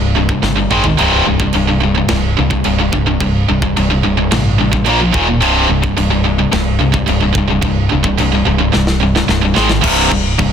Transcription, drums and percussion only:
0.29 kick
0.43 snare
0.71 mid tom
0.84 floor tom
0.98 china
1.40 kick
1.53 china
2.08 snare, china
2.51 kick
2.64 china
2.93 kick
3.20 kick, china
3.62 kick
3.77 china
4.32 snare, china
4.73 kick
4.86 china
5.14 kick
5.42 china
5.84 kick
5.97 china
6.53 snare, china
6.94 kick
7.07 china
7.35 kick
7.62 kick, china
8.04 kick
8.18 china
8.73 snare
8.87 snare
9.16 snare
9.29 snare
9.56 snare
9.69 snare
9.84 kick, crash, china
10.12 kick
10.39 kick, china

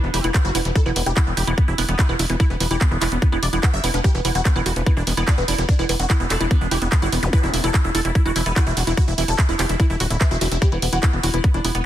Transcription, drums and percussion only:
0.14 open hi-hat
0.24 closed hi-hat
0.34 kick, clap, closed hi-hat
0.55 open hi-hat
0.65 closed hi-hat
0.76 kick, closed hi-hat
0.96 open hi-hat
1.06 closed hi-hat
1.17 kick, clap, closed hi-hat
1.37 open hi-hat
1.47 closed hi-hat
1.58 kick, closed hi-hat
1.78 open hi-hat
1.89 closed hi-hat
1.99 kick, clap, closed hi-hat
2.19 open hi-hat
2.30 closed hi-hat
2.40 kick, closed hi-hat
2.60 open hi-hat
2.71 closed hi-hat
2.81 kick, clap, closed hi-hat
3.02 clap, open hi-hat
3.12 closed hi-hat
3.22 kick, closed hi-hat
3.43 open hi-hat
3.53 closed hi-hat
3.63 kick, clap, closed hi-hat
3.84 open hi-hat
3.94 closed hi-hat
4.04 kick, closed hi-hat
4.25 open hi-hat
4.35 closed hi-hat
4.45 kick, clap, closed hi-hat
4.66 open hi-hat
4.76 closed hi-hat
4.86 kick, closed hi-hat
5.07 open hi-hat
5.17 closed hi-hat
5.28 kick, clap, closed hi-hat
5.48 open hi-hat
5.58 closed hi-hat
5.69 kick, closed hi-hat
5.89 open hi-hat
6.00 closed hi-hat
6.10 kick, clap, closed hi-hat
6.30 clap, open hi-hat
6.41 closed hi-hat
6.51 kick, closed hi-hat
6.71 open hi-hat
6.82 closed hi-hat
6.92 kick, clap, closed hi-hat
7.12 open hi-hat
7.23 closed hi-hat
7.33 kick, closed hi-hat
7.54 open hi-hat
7.64 closed hi-hat
7.74 kick, clap, closed hi-hat
7.95 open hi-hat
8.05 closed hi-hat
8.15 kick, closed hi-hat
8.36 open hi-hat
8.46 closed hi-hat
8.56 kick, clap, closed hi-hat
8.77 open hi-hat
8.87 closed hi-hat
8.97 kick, closed hi-hat
9.18 open hi-hat
9.28 closed hi-hat
9.39 kick, clap, closed hi-hat
9.59 clap, open hi-hat
9.69 closed hi-hat
9.80 kick, closed hi-hat
10.00 open hi-hat
10.10 closed hi-hat
10.21 kick, clap, closed hi-hat
10.41 open hi-hat
10.52 closed hi-hat
10.62 kick, closed hi-hat
10.82 open hi-hat
10.93 closed hi-hat
11.03 kick, clap, closed hi-hat
11.23 open hi-hat
11.34 closed hi-hat
11.44 kick, closed hi-hat
11.65 open hi-hat
11.75 closed hi-hat

